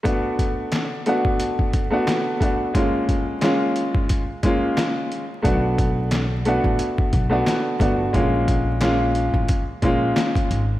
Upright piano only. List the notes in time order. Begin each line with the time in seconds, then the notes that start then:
0.03 A3 B3 D4 F#4
1.06 A3 B3 D4 F#4
1.90 A3 B3 D4 F#4
2.40 A3 B3 D4 F#4
2.74 G#3 A#3 C#4 F4
3.41 G#3 A#3 C#4 F4
4.43 G#3 A#3 C#4 F4
5.42 A3 B3 D4 F#4
6.46 A3 B3 D4 F#4
7.29 A3 B3 D4 F#4
7.79 A3 B3 D4 F#4
8.13 G#3 A#3 C#4 F4
8.80 G#3 A#3 C#4 F4
9.82 G#3 A#3 C#4 F4